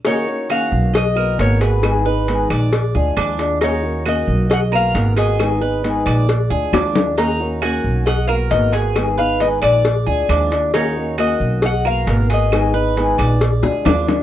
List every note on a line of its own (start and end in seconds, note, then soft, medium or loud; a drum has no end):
0.05 0.26 D#3 medium
0.05 0.27 A#3 medium
0.05 0.27 C#4 medium
0.05 0.48 D#4 medium
0.05 0.26 F#4 medium
0.05 0.47 C#5 loud
0.05 cowbell loud
0.05 maracas medium
0.27 0.49 A#3 soft
0.27 0.49 C#4 soft
0.27 0.49 F#4 medium
0.27 maracas medium
0.49 0.92 D#3 medium
0.49 0.93 A#3 medium
0.49 0.94 C#4 medium
0.49 0.93 F#4 medium
0.49 0.92 F5 loud
0.49 cowbell medium
0.49 claves medium
0.49 maracas medium
0.72 1.35 B1 loud
0.72 maracas soft
0.93 1.16 D#5 medium
0.93 1.37 D#5 loud
0.93 muted steel-string acoustic guitar stroke medium
0.93 cowbell loud
0.93 maracas medium
1.15 1.38 A#3 soft
1.15 1.38 B3 medium
1.15 1.37 F#4 medium
1.15 1.60 A#4 medium
1.15 claves medium
1.38 2.44 G#1 medium
1.38 1.60 B2 medium
1.38 1.60 D#3 medium
1.38 1.60 A#3 medium
1.38 1.60 B3 medium
1.38 1.59 F#4 medium
1.38 1.62 C#5 loud
1.38 cowbell medium
1.38 maracas medium
1.60 1.83 A#3 soft
1.60 1.83 B3 soft
1.60 1.82 F#4 medium
1.60 2.04 G#4 medium
1.60 2.47 B4 medium
1.60 cowbell medium
1.60 maracas soft
1.83 2.04 D#3 medium
1.83 2.05 G#3 medium
1.83 2.05 B3 medium
1.83 2.05 D#4 medium
1.83 2.03 G#4 medium
1.83 cowbell loud
1.83 claves medium
1.83 maracas medium
2.05 2.28 B3 soft
2.05 2.27 D#4 soft
2.05 2.26 G#4 medium
2.05 2.49 B4 medium
2.28 2.72 D#3 medium
2.28 2.72 G#3 medium
2.28 2.72 B3 medium
2.28 2.72 D#4 medium
2.28 2.73 G#4 medium
2.28 cowbell medium
2.28 maracas medium
2.50 2.91 A#1 medium
2.50 2.93 D5 medium
2.50 cowbell medium
2.50 claves medium
2.50 maracas soft
2.72 muted steel-string acoustic guitar stroke medium
2.72 cowbell loud
2.72 maracas medium
2.95 3.15 D2 medium
2.95 3.16 G#3 soft
2.95 3.17 D4 soft
2.95 3.16 F4 medium
2.95 3.16 G#4 medium
2.95 maracas medium
3.16 4.22 D#2 medium
3.16 3.38 F3 medium
3.16 3.39 G#3 medium
3.16 3.60 D4 medium
3.16 3.39 D4 medium
3.16 3.38 F4 medium
3.16 cowbell medium
3.16 claves medium
3.16 maracas medium
3.39 3.61 G#3 soft
3.39 3.61 D4 soft
3.39 3.61 F4 medium
3.39 cowbell medium
3.39 maracas soft
3.61 3.82 D#3 medium
3.61 3.83 A#3 medium
3.61 3.83 C#4 medium
3.61 4.04 D#4 medium
3.61 3.82 F#4 medium
3.61 4.04 C#5 medium
3.61 cowbell loud
3.61 maracas medium
3.83 4.05 A#3 soft
3.83 4.05 C#4 soft
3.83 4.05 F#4 soft
4.05 4.49 D#3 medium
4.05 4.49 A#3 medium
4.05 4.50 C#4 medium
4.05 4.49 F#4 medium
4.05 4.53 D#5 loud
4.05 cowbell medium
4.05 claves medium
4.05 maracas medium
4.28 4.91 B1 medium
4.28 maracas soft
4.50 4.72 D#5 medium
4.50 4.59 F#5 loud
4.50 muted steel-string acoustic guitar stroke medium
4.50 cowbell loud
4.50 maracas medium
4.72 4.94 A#3 soft
4.72 4.94 B3 soft
4.72 4.94 F#4 medium
4.72 5.15 A#4 medium
4.72 5.18 F5 loud
4.72 claves medium
4.94 6.00 G#1 medium
4.94 5.16 B2 medium
4.94 5.16 D#3 medium
4.94 5.17 A#3 medium
4.94 5.16 B3 medium
4.94 5.15 F#4 medium
4.94 cowbell medium
4.94 maracas medium
5.16 5.39 A#3 soft
5.16 5.39 B3 soft
5.16 5.38 F#4 medium
5.16 5.60 G#4 medium
5.16 5.81 D#5 medium
5.16 cowbell medium
5.16 maracas soft
5.39 5.61 D#3 medium
5.39 5.61 G#3 medium
5.39 5.61 B3 medium
5.39 5.61 D#4 medium
5.39 5.60 G#4 medium
5.39 cowbell loud
5.39 claves medium
5.39 maracas medium
5.61 5.83 B3 soft
5.61 5.83 D#4 medium
5.61 5.83 G#4 medium
5.61 6.05 B4 medium
5.61 maracas medium
5.83 6.27 D#3 medium
5.83 6.27 G#3 medium
5.83 6.28 B3 medium
5.83 6.28 D#4 medium
5.83 6.28 G#4 medium
5.83 cowbell medium
5.83 maracas medium
6.06 6.47 A#1 medium
6.06 6.49 D5 medium
6.06 cowbell medium
6.06 claves medium
6.06 maracas soft
6.29 muted steel-string acoustic guitar stroke medium
6.29 cowbell loud
6.29 maracas medium
6.50 6.71 D2 medium
6.50 6.72 G#3 soft
6.50 6.72 D4 soft
6.50 6.72 F4 soft
6.50 6.72 G#4 medium
6.50 maracas medium
6.72 7.78 D#2 medium
6.72 6.94 F3 medium
6.72 6.94 G#3 medium
6.72 7.16 D4 medium
6.72 6.95 D4 medium
6.72 6.94 F4 medium
6.72 cowbell medium
6.72 high bongo loud
6.72 claves medium
6.72 maracas medium
6.95 7.18 G#3 soft
6.95 7.17 D4 soft
6.95 7.17 F4 soft
6.95 cowbell medium
6.95 low bongo loud
6.95 maracas soft
7.17 7.39 D#3 medium
7.17 7.39 A#3 medium
7.17 7.40 C#4 medium
7.17 7.61 D#4 medium
7.17 7.39 F#4 medium
7.17 7.59 A#5 loud
7.17 cowbell loud
7.17 maracas medium
7.40 7.62 A#3 soft
7.40 7.62 C#4 soft
7.40 7.61 F#4 medium
7.61 8.06 D#3 medium
7.61 8.06 A#3 medium
7.61 8.07 C#4 medium
7.61 8.05 F#4 medium
7.61 8.07 F#4 medium
7.61 8.07 G#5 loud
7.61 cowbell medium
7.61 claves medium
7.61 maracas medium
7.83 8.47 B1 medium
7.83 maracas soft
8.05 8.28 D#5 medium
8.05 8.27 F#5 loud
8.05 muted steel-string acoustic guitar stroke medium
8.05 cowbell loud
8.05 maracas medium
8.28 8.51 A#3 soft
8.28 8.51 B3 soft
8.28 8.50 F#4 medium
8.28 8.72 A#4 medium
8.28 8.34 F5 medium
8.28 claves medium
8.28 maracas medium
8.50 9.56 G#1 medium
8.50 8.73 B2 medium
8.50 8.73 D#3 medium
8.50 8.73 A#3 medium
8.50 8.74 B3 medium
8.50 8.72 F#4 medium
8.50 8.74 D#5 loud
8.50 cowbell medium
8.50 maracas medium
8.72 8.96 A#3 soft
8.72 8.96 B3 soft
8.72 8.95 F#4 soft
8.72 9.17 G#4 medium
8.72 9.14 G#5 medium
8.72 cowbell medium
8.72 maracas soft
8.95 9.17 D#3 medium
8.95 9.18 G#3 medium
8.95 9.18 B3 medium
8.95 9.18 D#4 medium
8.95 9.17 G#4 medium
8.95 cowbell loud
8.95 claves medium
8.95 maracas medium
9.18 9.41 B3 soft
9.18 9.40 D#4 soft
9.18 9.40 G#4 medium
9.18 9.61 B4 medium
9.18 9.39 F5 medium
9.40 9.84 D#3 medium
9.40 9.84 G#3 medium
9.40 9.85 B3 medium
9.40 9.85 D#4 medium
9.40 9.85 G#4 medium
9.40 9.47 D#5 medium
9.40 cowbell medium
9.40 maracas medium
9.62 10.04 A#1 medium
9.62 10.05 D5 medium
9.62 10.48 D5 medium
9.62 cowbell medium
9.62 claves medium
9.62 maracas soft
9.85 muted steel-string acoustic guitar stroke medium
9.85 cowbell loud
9.85 maracas medium
10.06 10.28 D2 medium
10.06 10.28 G#3 soft
10.06 10.29 D4 medium
10.06 10.28 F4 medium
10.06 10.28 G#4 medium
10.06 maracas medium
10.29 11.34 D#2 medium
10.29 10.51 F3 medium
10.29 10.51 G#3 medium
10.29 10.73 D4 medium
10.29 10.51 D4 medium
10.29 10.50 F4 medium
10.29 cowbell medium
10.29 claves medium
10.29 maracas medium
10.51 10.74 G#3 soft
10.51 10.73 D4 soft
10.51 10.73 F4 soft
10.51 cowbell medium
10.51 maracas soft
10.74 10.95 D#3 medium
10.74 10.96 A#3 medium
10.74 10.96 C#4 medium
10.74 11.17 D#4 medium
10.74 10.95 F#4 medium
10.74 11.20 C#5 loud
10.74 cowbell loud
10.74 maracas medium
10.96 11.17 A#3 soft
10.96 11.18 C#4 soft
10.96 11.18 F#4 medium
11.18 11.62 D#3 medium
11.18 11.62 A#3 medium
11.18 11.63 C#4 medium
11.18 11.61 F#4 medium
11.18 11.63 F#4 medium
11.18 11.61 D#5 loud
11.18 cowbell medium
11.18 claves medium
11.18 maracas medium
11.40 12.03 B1 medium
11.40 maracas soft
11.62 11.84 D#5 medium
11.62 11.87 F#5 loud
11.62 muted steel-string acoustic guitar stroke medium
11.62 cowbell loud
11.62 maracas medium
11.85 12.07 A#3 soft
11.85 12.07 B3 soft
11.85 12.06 F#4 medium
11.85 12.28 A#4 medium
11.85 12.28 F5 loud
11.85 claves medium
11.85 maracas medium
12.07 13.12 G#1 medium
12.07 12.29 B2 medium
12.07 12.29 D#3 medium
12.07 12.29 A#3 medium
12.07 12.30 B3 medium
12.07 12.28 F#4 medium
12.07 cowbell medium
12.07 maracas medium
12.30 12.52 A#3 soft
12.30 12.52 B3 soft
12.30 12.51 F#4 soft
12.30 12.73 G#4 medium
12.30 cowbell medium
12.30 maracas soft
12.34 12.94 D#5 medium
12.52 12.73 D#3 medium
12.52 12.74 G#3 medium
12.52 12.74 B3 medium
12.52 12.74 D#4 medium
12.52 12.73 G#4 medium
12.52 cowbell loud
12.52 claves medium
12.52 maracas medium
12.74 12.96 B3 soft
12.74 12.96 D#4 soft
12.74 12.96 G#4 soft
12.74 13.17 B4 medium
12.74 maracas medium
12.96 13.40 D#3 medium
12.96 13.40 G#3 medium
12.96 13.40 B3 medium
12.96 13.41 D#4 medium
12.96 13.41 G#4 medium
12.96 cowbell medium
12.96 maracas medium
13.18 13.60 A#1 medium
13.18 13.62 D5 medium
13.18 cowbell medium
13.18 claves medium
13.18 maracas soft
13.40 muted steel-string acoustic guitar stroke medium
13.40 cowbell loud
13.40 maracas medium
13.63 13.84 D2 medium
13.63 13.85 G#3 soft
13.63 13.85 D4 medium
13.63 13.85 F4 medium
13.63 13.85 G#4 medium
13.63 high bongo medium
13.85 14.23 D#2 medium
13.85 14.07 F3 medium
13.85 14.07 G#3 medium
13.85 14.23 D4 medium
13.85 14.08 D4 medium
13.85 14.06 F4 medium
13.85 cowbell medium
13.85 low bongo loud
13.85 claves medium
13.85 maracas medium
14.08 14.23 G#3 soft
14.08 14.23 D4 soft
14.08 14.23 F4 medium
14.08 cowbell medium
14.08 low bongo medium
14.08 maracas soft